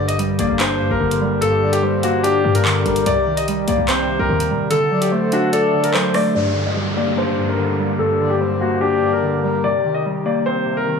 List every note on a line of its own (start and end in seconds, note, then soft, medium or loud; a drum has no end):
0.00 0.20 G1 loud
0.00 0.79 G2 loud
0.00 1.00 D3 medium
0.00 4.67 G3 medium
0.00 2.89 A#3 medium
0.00 2.89 D4 medium
0.00 4.67 G4 medium
0.08 0.16 D#5 medium
0.08 closed hi-hat medium
0.18 0.30 A#1 loud
0.18 1.20 G3 medium
0.18 closed hi-hat medium
0.29 0.39 G1 loud
0.39 0.49 G1 loud
0.39 1.42 A#3 loud
0.39 0.55 D5 medium
0.39 closed hi-hat medium
0.49 0.89 G1 loud
0.59 1.62 D4 medium
0.59 0.89 C5 medium
0.59 clap loud
0.59 closed hi-hat medium
0.81 1.41 G2 medium
0.91 1.00 G1 loud
0.91 1.39 A#4 medium
1.01 1.95 G1 loud
1.01 1.62 D3 medium
1.11 closed hi-hat medium
1.21 1.82 G3 medium
1.41 2.43 G2 loud
1.41 1.71 A4 loud
1.41 closed hi-hat loud
1.62 2.64 D3 medium
1.62 1.82 D5 medium
1.73 1.81 G4 medium
1.73 closed hi-hat medium
1.83 2.85 G3 medium
1.83 2.22 C5 medium
1.93 2.10 G2 loud
2.03 3.06 A#3 loud
2.03 2.20 F#4 medium
2.03 closed hi-hat medium
2.09 2.23 G1 loud
2.24 3.06 D4 medium
2.24 2.53 G4 loud
2.24 2.82 D5 medium
2.24 closed hi-hat medium
2.44 3.06 G2 medium
2.44 2.84 G2 loud
2.55 3.03 A#4 medium
2.55 closed hi-hat medium
2.65 3.06 D3 loud
2.65 clap loud
2.86 3.05 G1 loud
2.86 3.07 G3 medium
2.86 3.05 A#4 medium
2.86 closed hi-hat soft
2.96 closed hi-hat medium
3.06 3.65 C2 loud
3.06 4.07 C3 medium
3.06 4.69 C4 medium
3.06 4.69 D#4 medium
3.06 3.35 D5 loud
3.06 closed hi-hat loud
3.26 4.29 D#3 medium
3.37 3.45 D#5 medium
3.37 closed hi-hat medium
3.48 4.49 G3 medium
3.48 closed hi-hat medium
3.68 3.78 C2 loud
3.68 4.71 A#3 medium
3.68 3.84 D5 medium
3.68 closed hi-hat medium
3.78 4.18 C2 loud
3.88 4.71 C4 medium
3.88 4.17 C5 medium
3.88 clap loud
3.88 closed hi-hat medium
4.08 4.70 C3 medium
4.19 4.29 C2 loud
4.19 4.68 A#4 medium
4.30 4.52 D#2 loud
4.30 4.71 D#3 medium
4.40 closed hi-hat medium
4.50 4.70 C3 loud
4.50 4.71 G3 medium
4.70 5.72 D3 medium
4.70 6.33 F#3 medium
4.70 6.33 A3 medium
4.70 6.33 D4 medium
4.70 4.99 A4 loud
4.70 6.33 A4 medium
4.70 closed hi-hat loud
4.91 5.93 F#3 medium
4.91 5.11 D5 medium
5.02 5.10 G4 medium
5.02 closed hi-hat medium
5.12 6.14 A3 medium
5.12 5.50 C5 medium
5.32 6.35 D4 loud
5.32 5.49 F#4 medium
5.32 closed hi-hat medium
5.52 5.82 A4 medium
5.52 6.35 D5 medium
5.52 6.31 D5 medium
5.52 closed hi-hat medium
5.74 6.35 D3 medium
5.84 5.92 A#4 medium
5.84 closed hi-hat medium
5.94 6.35 F#3 medium
5.94 6.10 C5 medium
5.94 clap loud
6.14 6.35 A3 medium
6.14 6.30 D5 medium
6.14 cross-stick loud
6.14 open hi-hat medium
6.35 7.37 G2 medium
6.35 11.00 G3 medium
6.35 9.60 A#3 medium
6.35 9.61 D4 medium
6.35 11.00 G4 medium
6.35 6.64 D5 loud
6.35 downlifter medium
6.55 7.57 D3 medium
6.66 6.74 D#5 medium
6.76 7.78 G3 medium
6.97 8.00 A#3 loud
6.97 7.13 D5 medium
7.17 8.20 D4 medium
7.17 7.47 C5 medium
7.38 7.98 G2 medium
7.49 7.97 A#4 medium
7.58 8.19 D3 medium
7.79 8.39 G3 medium
7.99 9.01 G2 medium
7.99 8.28 A4 medium
8.20 9.22 D3 medium
8.20 8.39 D5 medium
8.30 8.38 G4 medium
8.40 9.43 G3 medium
8.40 8.79 C5 medium
8.61 9.64 A#3 medium
8.61 8.77 F#4 medium
8.81 9.64 D4 medium
8.81 9.10 G4 medium
8.81 9.40 D5 medium
9.02 9.64 G2 medium
9.12 9.61 A#4 medium
9.23 9.64 D3 medium
9.43 9.64 G3 medium
9.43 9.63 A#4 medium
9.64 10.64 C3 medium
9.64 11.00 C4 medium
9.64 11.00 D#4 medium
9.64 9.93 D5 medium
9.84 10.86 D#3 medium
9.94 10.03 D#5 medium
10.05 11.00 G3 medium
10.25 11.00 A#3 medium
10.25 10.42 D5 medium
10.46 11.00 C4 medium
10.46 10.75 C5 medium
10.65 11.00 C3 medium
10.77 11.00 A#4 medium
10.87 11.00 D#3 medium